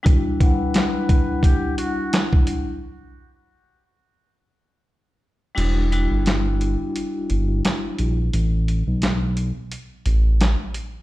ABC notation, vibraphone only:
X:1
M:4/4
L:1/8
Q:"Swing 16ths" 1/4=87
K:Em
V:1 name="Vibraphone"
[G,DEF] [G,DEf]6 z | z8 | [G,DEF] [G,DEF]6 z | z8 |]